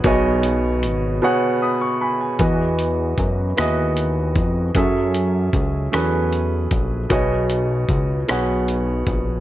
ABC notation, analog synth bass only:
X:1
M:6/8
L:1/8
Q:3/8=51
K:Bmix
V:1 name="Analog synth bass" clef=bass
B,,,2 G,,, z3 | E,,2 F,, D,,2 ^E,, | F,,2 C,, E,,2 ^A,,, | B,,,2 C,, B,,,2 ^A,,, |]